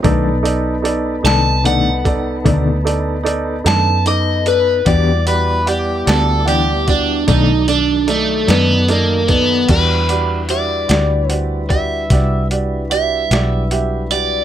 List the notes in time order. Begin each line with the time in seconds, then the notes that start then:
0.02 B1 B2 D#3 A3 B3 D4 D#4 A4 B4 D5, kick, closed hi-hat
0.43 D#4 A4 D5, closed hi-hat
0.82 D#4 A4 D5, closed hi-hat
1.23 C2 D#3 A3 D4 D#4 A4 D5 A5, closed hi-hat
1.27 snare
1.64 B2 D#3 A3 D4 D#4 A4 D5 F#5, closed hi-hat
2.04 D#4 A4 D5, kick, closed hi-hat
2.44 D2 B2 D#3 A3 D4 D#4 A4 D5, kick, closed hi-hat
2.85 D#4 A4 D5, closed hi-hat
3.23 D#4 A4 D5, closed hi-hat
3.64 F#2 D#3 A3 D4 D#4 A4 D5 A5, snare, closed hi-hat
4.06 D#4 A4 D#5 D6, closed hi-hat
4.46 D#4 A4 B4 D5, closed hi-hat
4.85 E2 E3 G3 B3 D4 E4 F#4 G4 D5, kick, closed hi-hat
5.26 F#4 G4 B4 D5, closed hi-hat
5.66 G4 D5 F#5, closed hi-hat
6.06 D2 B3 D4 F#4 G4 A4 D5, snare, closed hi-hat
6.45 E3 B3 D4 G4 D5 F#5, closed hi-hat
6.87 D4 F#4 G4 D5, kick, closed hi-hat
7.27 B1 B2 D#3 F#3 A3 D4 D#4 A4 D5, kick, snare, closed hi-hat
7.68 D4 A4 D5, closed hi-hat
8.07 A3 D#4 A4 D5, closed hi-hat
8.47 F#2 D#3 A3 B3 D4 D#4 A4 D5, snare, closed hi-hat
8.88 A#3 D#4 A4 D5, closed hi-hat
9.28 B3 D#4 A4 D5, kick, closed hi-hat
9.68 E2 G3 D4 E4 F#4 G4 B4 D5, kick, closed hi-hat, crash
10.09 F#4 G4 D5, closed hi-hat
10.48 F#4 G4 D5 E5, closed hi-hat
10.88 D2 F#4 G4 D5, snare, closed hi-hat
11.29 F#4 G4 C5 D5, closed hi-hat
11.70 F#4 G4 D5 E5, kick, closed hi-hat
12.10 C2 F#4 G4 D5, kick, snare, closed hi-hat
12.51 F#4 G4 D5, closed hi-hat
12.90 F#4 G4 D5 E5, closed hi-hat
13.31 B1 F#4 G4 D5, snare, closed hi-hat
13.71 F#4 G4 E5, closed hi-hat
14.11 F#4 G4 D5, closed hi-hat